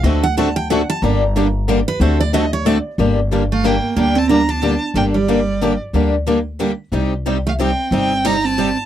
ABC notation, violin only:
X:1
M:3/4
L:1/8
Q:"Swing" 1/4=183
K:Gm
V:1 name="Violin"
z6 | z6 | z6 | z3 f g2 |
g a b a2 z | g d4 z | z6 | z3 f g2 |
g2 b a2 z |]